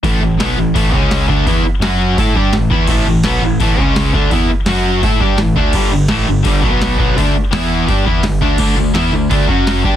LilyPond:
<<
  \new Staff \with { instrumentName = "Distorted electric guitar" } { \clef bass \time 4/4 \key a \mixolydian \tempo 4 = 168 <a, e a>8 <a, e>8 <b, fis b>8 <a, e>8 <a, e a>8 <cis gis cis'>4 <d a d'>8 | <e b e'>8 r8 <fis cis' fis'>4 <a e' a'>8 <g d' g'>8 <a, e>8 <e b e'>8 | <a, e a>8 <a, e>8 <b, fis b>8 <a, e>8 <a, e a>8 <cis gis cis'>4 <d a d'>8 | <e b e'>8 r8 <fis cis' fis'>4 <a e' a'>8 <g d' g'>8 <a, e>8 <d a d'>8 |
<g, d g>8 <g, d>8 <a, e a>8 <g, d>8 <g, d g>8 <b, fis b>4 <b, fis b>8 | <d a d'>8 r8 <e b e'>4 <g d' g'>8 <e b e'>8 <g, d>8 <d a d'>8 | <d a d'>8 <d a>8 <e b e'>8 <d a>8 <d a d'>8 <fis cis' fis'>4 <g d' g'>8 | }
  \new Staff \with { instrumentName = "Distorted electric guitar" } { \clef bass \time 4/4 \key a \mixolydian <a, e a>8 <a, e>8 <b, fis b>8 <a, e>8 <a, e a>8 <cis gis cis'>4 <d a d'>8 | <e b e'>8 r8 <fis cis' fis'>4 <a e' a'>8 <g d' g'>8 <a, e>8 <e b e'>8 | <a, e a>8 <a, e>8 <b, fis b>8 <a, e>8 <a, e a>8 <cis gis cis'>4 <d a d'>8 | <e b e'>8 r8 <fis cis' fis'>4 <a e' a'>8 <g d' g'>8 <a, e>8 <d a d'>8 |
<g, d g>8 <g, d>8 <a, e a>8 <g, d>8 <g, d g>8 <b, fis b>4 <b, fis b>8 | <d a d'>8 r8 <e b e'>4 <g d' g'>8 <e b e'>8 <g, d>8 <d a d'>8 | <d a d'>8 <d a>8 <e b e'>8 <d a>8 <d a d'>8 <fis cis' fis'>4 <g d' g'>8 | }
  \new Staff \with { instrumentName = "Overdriven electric guitar" } { \clef bass \time 4/4 \key a \mixolydian <a, e a>8 <a, e>8 <b, fis b>8 <a, e>8 <a, e a>8 <cis gis cis'>4 <d a d'>8 | <e b e'>8 r8 <fis cis' fis'>4 <a e' a'>8 <g d' g'>8 <a, e>8 <e b e'>8 | <a, e a>8 <a, e>8 <b, fis b>8 <a, e>8 <a, e a>8 <cis gis cis'>4 <d a d'>8 | <e b e'>8 r8 <fis cis' fis'>4 <a e' a'>8 <g d' g'>8 <a, e>8 <d a d'>8 |
<g, d g>8 <g, d>8 <a, e a>8 <g, d>8 <g, d g>8 <b, fis b>4 <b, fis b>8 | <d a d'>8 r8 <e b e'>4 <g d' g'>8 <e b e'>8 <g, d>8 <d a d'>8 | <d a d'>8 <d a>8 <e b e'>8 <d a>8 <d a d'>8 <fis cis' fis'>4 <g d' g'>8 | }
  \new Staff \with { instrumentName = "Picked electric bass" } { \clef bass \time 4/4 \key a \mixolydian a,,8 a,,8 b,,8 a,,8 a,,8 cis,4 d,8 | e,8 r8 fis,4 a,8 g,8 a,,8 e,8 | a,,8 a,,8 b,,8 a,,8 a,,8 cis,4 d,8 | e,8 r8 fis,4 a,8 g,8 a,,8 d,8 |
g,,8 g,,8 a,,8 g,,8 g,,8 b,,4 b,,8 | d,8 r8 e,4 g,8 e,8 g,,8 d,8 | d,8 d,8 e,8 d,8 d,8 fis,4 g,8 | }
  \new DrumStaff \with { instrumentName = "Drums" } \drummode { \time 4/4 <hho bd>4 <hho sn>4 <hho bd>8 bd8 <hho sn>8 bd8 | <hho bd>4 <hho sn>4 <hho bd>8 bd8 <hho sn>8 bd8 | <cymc bd>4 <hho sn>4 <hho bd>8 bd8 <hho sn>8 bd8 | <hho bd>4 <hho sn>4 <hho bd>8 bd8 <hho sn>8 bd8 |
<cymc bd>4 <hho sn>4 <hho bd>8 bd8 <hho sn>8 bd8 | <hho bd>4 <hho sn>4 <hho bd>8 bd8 <hho sn>8 bd8 | <cymc bd>4 <hho sn>4 <hho bd>8 bd8 <hho sn>8 bd8 | }
>>